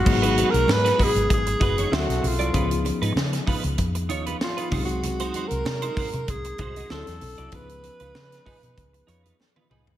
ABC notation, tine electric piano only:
X:1
M:4/4
L:1/8
Q:"Swing 16ths" 1/4=96
K:G#dor
V:1 name="Tine electric piano"
[F,G,B,DG]6 [F,=C=DG=A=e]2 | [E,B,CDG]6- [E,B,CDG] [F,G,^B,D=G^G]- | [F,G,^B,D=G^G]6 [F,=C=D=E=A]2 | [E,B,CDG]8 |]